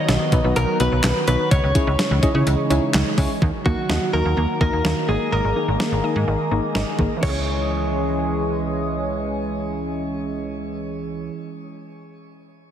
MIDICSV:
0, 0, Header, 1, 7, 480
1, 0, Start_track
1, 0, Tempo, 476190
1, 1526, Time_signature, 4, 2, 24, 8
1, 12814, End_track
2, 0, Start_track
2, 0, Title_t, "Clean electric guitar"
2, 0, Program_c, 0, 27
2, 0, Note_on_c, 0, 75, 115
2, 564, Note_off_c, 0, 75, 0
2, 568, Note_on_c, 0, 70, 101
2, 790, Note_off_c, 0, 70, 0
2, 808, Note_on_c, 0, 71, 100
2, 1275, Note_off_c, 0, 71, 0
2, 1287, Note_on_c, 0, 71, 93
2, 1522, Note_off_c, 0, 71, 0
2, 1526, Note_on_c, 0, 73, 93
2, 2926, Note_off_c, 0, 73, 0
2, 3686, Note_on_c, 0, 66, 91
2, 4132, Note_off_c, 0, 66, 0
2, 4167, Note_on_c, 0, 70, 107
2, 4635, Note_off_c, 0, 70, 0
2, 4647, Note_on_c, 0, 70, 101
2, 5127, Note_on_c, 0, 68, 89
2, 5141, Note_off_c, 0, 70, 0
2, 5350, Note_off_c, 0, 68, 0
2, 5367, Note_on_c, 0, 70, 90
2, 6766, Note_off_c, 0, 70, 0
2, 7286, Note_on_c, 0, 73, 77
2, 11388, Note_off_c, 0, 73, 0
2, 12814, End_track
3, 0, Start_track
3, 0, Title_t, "Synth keys"
3, 0, Program_c, 1, 88
3, 326, Note_on_c, 1, 71, 86
3, 327, Note_on_c, 1, 59, 76
3, 327, Note_on_c, 1, 63, 69
3, 327, Note_on_c, 1, 66, 72
3, 389, Note_off_c, 1, 59, 0
3, 389, Note_off_c, 1, 63, 0
3, 389, Note_off_c, 1, 66, 0
3, 389, Note_off_c, 1, 71, 0
3, 448, Note_on_c, 1, 59, 74
3, 448, Note_on_c, 1, 63, 68
3, 448, Note_on_c, 1, 66, 67
3, 448, Note_on_c, 1, 71, 80
3, 572, Note_off_c, 1, 59, 0
3, 572, Note_off_c, 1, 63, 0
3, 572, Note_off_c, 1, 66, 0
3, 572, Note_off_c, 1, 71, 0
3, 807, Note_on_c, 1, 59, 79
3, 807, Note_on_c, 1, 63, 73
3, 807, Note_on_c, 1, 66, 71
3, 808, Note_on_c, 1, 71, 84
3, 931, Note_off_c, 1, 63, 0
3, 931, Note_off_c, 1, 66, 0
3, 932, Note_off_c, 1, 59, 0
3, 932, Note_off_c, 1, 71, 0
3, 1287, Note_on_c, 1, 63, 70
3, 1287, Note_on_c, 1, 73, 84
3, 1288, Note_on_c, 1, 59, 76
3, 1288, Note_on_c, 1, 66, 68
3, 1411, Note_off_c, 1, 73, 0
3, 1412, Note_off_c, 1, 59, 0
3, 1412, Note_off_c, 1, 63, 0
3, 1412, Note_off_c, 1, 66, 0
3, 1766, Note_on_c, 1, 61, 74
3, 1766, Note_on_c, 1, 64, 72
3, 1766, Note_on_c, 1, 68, 72
3, 1767, Note_on_c, 1, 73, 85
3, 1891, Note_off_c, 1, 61, 0
3, 1891, Note_off_c, 1, 64, 0
3, 1891, Note_off_c, 1, 68, 0
3, 1891, Note_off_c, 1, 73, 0
3, 2245, Note_on_c, 1, 61, 91
3, 2245, Note_on_c, 1, 64, 84
3, 2245, Note_on_c, 1, 68, 83
3, 2245, Note_on_c, 1, 75, 99
3, 2308, Note_off_c, 1, 61, 0
3, 2308, Note_off_c, 1, 64, 0
3, 2308, Note_off_c, 1, 68, 0
3, 2308, Note_off_c, 1, 75, 0
3, 2364, Note_on_c, 1, 61, 88
3, 2364, Note_on_c, 1, 64, 80
3, 2364, Note_on_c, 1, 68, 79
3, 2364, Note_on_c, 1, 73, 97
3, 2490, Note_off_c, 1, 61, 0
3, 2490, Note_off_c, 1, 64, 0
3, 2490, Note_off_c, 1, 68, 0
3, 2490, Note_off_c, 1, 73, 0
3, 2724, Note_on_c, 1, 68, 84
3, 2725, Note_on_c, 1, 61, 92
3, 2725, Note_on_c, 1, 64, 84
3, 2725, Note_on_c, 1, 73, 102
3, 2850, Note_off_c, 1, 61, 0
3, 2850, Note_off_c, 1, 64, 0
3, 2850, Note_off_c, 1, 68, 0
3, 2850, Note_off_c, 1, 73, 0
3, 3204, Note_on_c, 1, 73, 99
3, 3205, Note_on_c, 1, 61, 90
3, 3205, Note_on_c, 1, 64, 84
3, 3205, Note_on_c, 1, 68, 82
3, 3330, Note_off_c, 1, 61, 0
3, 3330, Note_off_c, 1, 64, 0
3, 3330, Note_off_c, 1, 68, 0
3, 3330, Note_off_c, 1, 73, 0
3, 3686, Note_on_c, 1, 66, 65
3, 3687, Note_on_c, 1, 58, 71
3, 3687, Note_on_c, 1, 63, 65
3, 3687, Note_on_c, 1, 70, 79
3, 3811, Note_off_c, 1, 58, 0
3, 3811, Note_off_c, 1, 63, 0
3, 3811, Note_off_c, 1, 66, 0
3, 3812, Note_off_c, 1, 70, 0
3, 4167, Note_on_c, 1, 58, 71
3, 4167, Note_on_c, 1, 63, 65
3, 4167, Note_on_c, 1, 66, 63
3, 4167, Note_on_c, 1, 70, 81
3, 4291, Note_off_c, 1, 58, 0
3, 4291, Note_off_c, 1, 63, 0
3, 4291, Note_off_c, 1, 66, 0
3, 4291, Note_off_c, 1, 70, 0
3, 4647, Note_on_c, 1, 58, 71
3, 4647, Note_on_c, 1, 63, 66
3, 4647, Note_on_c, 1, 66, 64
3, 4647, Note_on_c, 1, 70, 78
3, 4771, Note_off_c, 1, 58, 0
3, 4771, Note_off_c, 1, 63, 0
3, 4771, Note_off_c, 1, 66, 0
3, 4771, Note_off_c, 1, 70, 0
3, 5125, Note_on_c, 1, 58, 72
3, 5126, Note_on_c, 1, 63, 70
3, 5126, Note_on_c, 1, 68, 68
3, 5126, Note_on_c, 1, 70, 81
3, 5510, Note_off_c, 1, 58, 0
3, 5510, Note_off_c, 1, 63, 0
3, 5510, Note_off_c, 1, 68, 0
3, 5510, Note_off_c, 1, 70, 0
3, 5606, Note_on_c, 1, 58, 72
3, 5606, Note_on_c, 1, 68, 64
3, 5607, Note_on_c, 1, 63, 66
3, 5607, Note_on_c, 1, 70, 78
3, 5731, Note_off_c, 1, 58, 0
3, 5731, Note_off_c, 1, 63, 0
3, 5731, Note_off_c, 1, 68, 0
3, 5731, Note_off_c, 1, 70, 0
3, 6084, Note_on_c, 1, 63, 72
3, 6084, Note_on_c, 1, 68, 75
3, 6085, Note_on_c, 1, 58, 82
3, 6085, Note_on_c, 1, 70, 91
3, 6210, Note_off_c, 1, 58, 0
3, 6210, Note_off_c, 1, 63, 0
3, 6210, Note_off_c, 1, 68, 0
3, 6210, Note_off_c, 1, 70, 0
3, 6565, Note_on_c, 1, 58, 83
3, 6565, Note_on_c, 1, 63, 74
3, 6566, Note_on_c, 1, 68, 74
3, 6566, Note_on_c, 1, 70, 89
3, 6690, Note_off_c, 1, 58, 0
3, 6691, Note_off_c, 1, 63, 0
3, 6691, Note_off_c, 1, 68, 0
3, 6691, Note_off_c, 1, 70, 0
3, 7044, Note_on_c, 1, 68, 74
3, 7044, Note_on_c, 1, 70, 91
3, 7045, Note_on_c, 1, 58, 81
3, 7045, Note_on_c, 1, 63, 72
3, 7170, Note_off_c, 1, 58, 0
3, 7170, Note_off_c, 1, 63, 0
3, 7170, Note_off_c, 1, 68, 0
3, 7170, Note_off_c, 1, 70, 0
3, 7264, Note_on_c, 1, 61, 79
3, 7278, Note_on_c, 1, 64, 69
3, 7291, Note_on_c, 1, 68, 69
3, 7305, Note_on_c, 1, 73, 86
3, 11366, Note_off_c, 1, 61, 0
3, 11379, Note_off_c, 1, 64, 0
3, 11393, Note_off_c, 1, 68, 0
3, 11406, Note_off_c, 1, 73, 0
3, 12814, End_track
4, 0, Start_track
4, 0, Title_t, "Synth arpeggio sound"
4, 0, Program_c, 2, 84
4, 3445, Note_on_c, 2, 51, 98
4, 3616, Note_off_c, 2, 51, 0
4, 3686, Note_on_c, 2, 58, 81
4, 3857, Note_off_c, 2, 58, 0
4, 3924, Note_on_c, 2, 75, 90
4, 4096, Note_off_c, 2, 75, 0
4, 4164, Note_on_c, 2, 51, 76
4, 4335, Note_off_c, 2, 51, 0
4, 4404, Note_on_c, 2, 58, 90
4, 4575, Note_off_c, 2, 58, 0
4, 4645, Note_on_c, 2, 75, 87
4, 4816, Note_off_c, 2, 75, 0
4, 4885, Note_on_c, 2, 51, 82
4, 5056, Note_off_c, 2, 51, 0
4, 5125, Note_on_c, 2, 58, 77
4, 5296, Note_off_c, 2, 58, 0
4, 5367, Note_on_c, 2, 75, 102
4, 5537, Note_off_c, 2, 75, 0
4, 5606, Note_on_c, 2, 51, 76
4, 5776, Note_off_c, 2, 51, 0
4, 5847, Note_on_c, 2, 58, 83
4, 6017, Note_off_c, 2, 58, 0
4, 6088, Note_on_c, 2, 75, 84
4, 6258, Note_off_c, 2, 75, 0
4, 6328, Note_on_c, 2, 51, 88
4, 6498, Note_off_c, 2, 51, 0
4, 6566, Note_on_c, 2, 58, 82
4, 6737, Note_off_c, 2, 58, 0
4, 6807, Note_on_c, 2, 75, 88
4, 6977, Note_off_c, 2, 75, 0
4, 7047, Note_on_c, 2, 51, 73
4, 7217, Note_off_c, 2, 51, 0
4, 7225, Note_on_c, 2, 52, 84
4, 7286, Note_on_c, 2, 61, 76
4, 7346, Note_on_c, 2, 68, 93
4, 11327, Note_off_c, 2, 52, 0
4, 11388, Note_off_c, 2, 61, 0
4, 11447, Note_off_c, 2, 68, 0
4, 12814, End_track
5, 0, Start_track
5, 0, Title_t, "Analog synth pad"
5, 0, Program_c, 3, 89
5, 0, Note_on_c, 3, 51, 79
5, 0, Note_on_c, 3, 54, 76
5, 0, Note_on_c, 3, 59, 76
5, 0, Note_on_c, 3, 66, 90
5, 1485, Note_off_c, 3, 51, 0
5, 1506, Note_off_c, 3, 54, 0
5, 1506, Note_off_c, 3, 59, 0
5, 1506, Note_off_c, 3, 66, 0
5, 1526, Note_on_c, 3, 63, 92
5, 1527, Note_on_c, 3, 49, 83
5, 1527, Note_on_c, 3, 52, 77
5, 1527, Note_on_c, 3, 56, 74
5, 3427, Note_off_c, 3, 49, 0
5, 3427, Note_off_c, 3, 52, 0
5, 3427, Note_off_c, 3, 56, 0
5, 3427, Note_off_c, 3, 63, 0
5, 3445, Note_on_c, 3, 51, 77
5, 3445, Note_on_c, 3, 54, 69
5, 3445, Note_on_c, 3, 66, 88
5, 3446, Note_on_c, 3, 58, 72
5, 5109, Note_off_c, 3, 54, 0
5, 5109, Note_off_c, 3, 66, 0
5, 5127, Note_on_c, 3, 68, 84
5, 5128, Note_on_c, 3, 56, 70
5, 7247, Note_off_c, 3, 51, 0
5, 7248, Note_off_c, 3, 58, 0
5, 7265, Note_off_c, 3, 56, 0
5, 7265, Note_off_c, 3, 68, 0
5, 7284, Note_on_c, 3, 52, 78
5, 7284, Note_on_c, 3, 68, 83
5, 7285, Note_on_c, 3, 56, 71
5, 7285, Note_on_c, 3, 61, 70
5, 11385, Note_off_c, 3, 68, 0
5, 11386, Note_off_c, 3, 52, 0
5, 11386, Note_off_c, 3, 61, 0
5, 11387, Note_off_c, 3, 56, 0
5, 12814, End_track
6, 0, Start_track
6, 0, Title_t, "FM bass"
6, 0, Program_c, 4, 39
6, 87, Note_on_c, 4, 35, 115
6, 177, Note_off_c, 4, 35, 0
6, 326, Note_on_c, 4, 35, 106
6, 417, Note_off_c, 4, 35, 0
6, 447, Note_on_c, 4, 35, 101
6, 537, Note_off_c, 4, 35, 0
6, 570, Note_on_c, 4, 35, 109
6, 659, Note_off_c, 4, 35, 0
6, 807, Note_on_c, 4, 35, 100
6, 898, Note_off_c, 4, 35, 0
6, 929, Note_on_c, 4, 35, 96
6, 1019, Note_off_c, 4, 35, 0
6, 1047, Note_on_c, 4, 35, 101
6, 1138, Note_off_c, 4, 35, 0
6, 1287, Note_on_c, 4, 35, 109
6, 1377, Note_off_c, 4, 35, 0
6, 1527, Note_on_c, 4, 37, 110
6, 1618, Note_off_c, 4, 37, 0
6, 1648, Note_on_c, 4, 37, 97
6, 1738, Note_off_c, 4, 37, 0
6, 1886, Note_on_c, 4, 37, 107
6, 1977, Note_off_c, 4, 37, 0
6, 2126, Note_on_c, 4, 37, 109
6, 2217, Note_off_c, 4, 37, 0
6, 2366, Note_on_c, 4, 49, 96
6, 2457, Note_off_c, 4, 49, 0
6, 2487, Note_on_c, 4, 37, 111
6, 2577, Note_off_c, 4, 37, 0
6, 2726, Note_on_c, 4, 37, 103
6, 2817, Note_off_c, 4, 37, 0
6, 2966, Note_on_c, 4, 37, 110
6, 3057, Note_off_c, 4, 37, 0
6, 3203, Note_on_c, 4, 37, 104
6, 3295, Note_off_c, 4, 37, 0
6, 3447, Note_on_c, 4, 39, 106
6, 3537, Note_off_c, 4, 39, 0
6, 3686, Note_on_c, 4, 39, 95
6, 3777, Note_off_c, 4, 39, 0
6, 3926, Note_on_c, 4, 39, 96
6, 4017, Note_off_c, 4, 39, 0
6, 4167, Note_on_c, 4, 39, 98
6, 4257, Note_off_c, 4, 39, 0
6, 4288, Note_on_c, 4, 39, 98
6, 4378, Note_off_c, 4, 39, 0
6, 4407, Note_on_c, 4, 39, 99
6, 4497, Note_off_c, 4, 39, 0
6, 4646, Note_on_c, 4, 39, 104
6, 4737, Note_off_c, 4, 39, 0
6, 4768, Note_on_c, 4, 39, 86
6, 4858, Note_off_c, 4, 39, 0
6, 4886, Note_on_c, 4, 39, 94
6, 4977, Note_off_c, 4, 39, 0
6, 5126, Note_on_c, 4, 32, 100
6, 5217, Note_off_c, 4, 32, 0
6, 5368, Note_on_c, 4, 32, 105
6, 5458, Note_off_c, 4, 32, 0
6, 5487, Note_on_c, 4, 32, 97
6, 5578, Note_off_c, 4, 32, 0
6, 5728, Note_on_c, 4, 32, 99
6, 5818, Note_off_c, 4, 32, 0
6, 5968, Note_on_c, 4, 32, 102
6, 6058, Note_off_c, 4, 32, 0
6, 6207, Note_on_c, 4, 44, 102
6, 6297, Note_off_c, 4, 44, 0
6, 6327, Note_on_c, 4, 32, 99
6, 6417, Note_off_c, 4, 32, 0
6, 6567, Note_on_c, 4, 32, 99
6, 6658, Note_off_c, 4, 32, 0
6, 6808, Note_on_c, 4, 32, 92
6, 6898, Note_off_c, 4, 32, 0
6, 7043, Note_on_c, 4, 32, 97
6, 7135, Note_off_c, 4, 32, 0
6, 7286, Note_on_c, 4, 37, 97
6, 11387, Note_off_c, 4, 37, 0
6, 12814, End_track
7, 0, Start_track
7, 0, Title_t, "Drums"
7, 86, Note_on_c, 9, 38, 127
7, 89, Note_on_c, 9, 42, 74
7, 186, Note_off_c, 9, 38, 0
7, 189, Note_off_c, 9, 42, 0
7, 324, Note_on_c, 9, 42, 78
7, 325, Note_on_c, 9, 36, 93
7, 425, Note_off_c, 9, 42, 0
7, 426, Note_off_c, 9, 36, 0
7, 566, Note_on_c, 9, 42, 67
7, 666, Note_off_c, 9, 42, 0
7, 806, Note_on_c, 9, 42, 78
7, 907, Note_off_c, 9, 42, 0
7, 1045, Note_on_c, 9, 38, 122
7, 1045, Note_on_c, 9, 39, 106
7, 1045, Note_on_c, 9, 42, 73
7, 1146, Note_off_c, 9, 38, 0
7, 1146, Note_off_c, 9, 39, 0
7, 1146, Note_off_c, 9, 42, 0
7, 1285, Note_on_c, 9, 42, 81
7, 1386, Note_off_c, 9, 42, 0
7, 1526, Note_on_c, 9, 42, 89
7, 1527, Note_on_c, 9, 36, 111
7, 1627, Note_off_c, 9, 42, 0
7, 1628, Note_off_c, 9, 36, 0
7, 1765, Note_on_c, 9, 42, 87
7, 1766, Note_on_c, 9, 36, 95
7, 1866, Note_off_c, 9, 36, 0
7, 1866, Note_off_c, 9, 42, 0
7, 2006, Note_on_c, 9, 38, 125
7, 2008, Note_on_c, 9, 42, 76
7, 2106, Note_off_c, 9, 38, 0
7, 2109, Note_off_c, 9, 42, 0
7, 2245, Note_on_c, 9, 36, 92
7, 2245, Note_on_c, 9, 42, 80
7, 2346, Note_off_c, 9, 36, 0
7, 2346, Note_off_c, 9, 42, 0
7, 2487, Note_on_c, 9, 42, 65
7, 2588, Note_off_c, 9, 42, 0
7, 2727, Note_on_c, 9, 42, 80
7, 2828, Note_off_c, 9, 42, 0
7, 2967, Note_on_c, 9, 38, 123
7, 2967, Note_on_c, 9, 39, 102
7, 2967, Note_on_c, 9, 42, 72
7, 3067, Note_off_c, 9, 42, 0
7, 3068, Note_off_c, 9, 38, 0
7, 3068, Note_off_c, 9, 39, 0
7, 3204, Note_on_c, 9, 36, 90
7, 3206, Note_on_c, 9, 46, 80
7, 3304, Note_off_c, 9, 36, 0
7, 3306, Note_off_c, 9, 46, 0
7, 3447, Note_on_c, 9, 36, 107
7, 3548, Note_off_c, 9, 36, 0
7, 3686, Note_on_c, 9, 36, 92
7, 3787, Note_off_c, 9, 36, 0
7, 3927, Note_on_c, 9, 38, 113
7, 4027, Note_off_c, 9, 38, 0
7, 4645, Note_on_c, 9, 36, 90
7, 4746, Note_off_c, 9, 36, 0
7, 4886, Note_on_c, 9, 38, 113
7, 4987, Note_off_c, 9, 38, 0
7, 5846, Note_on_c, 9, 38, 112
7, 5947, Note_off_c, 9, 38, 0
7, 6804, Note_on_c, 9, 38, 108
7, 6905, Note_off_c, 9, 38, 0
7, 7042, Note_on_c, 9, 36, 87
7, 7143, Note_off_c, 9, 36, 0
7, 7285, Note_on_c, 9, 49, 77
7, 7286, Note_on_c, 9, 36, 87
7, 7386, Note_off_c, 9, 36, 0
7, 7386, Note_off_c, 9, 49, 0
7, 12814, End_track
0, 0, End_of_file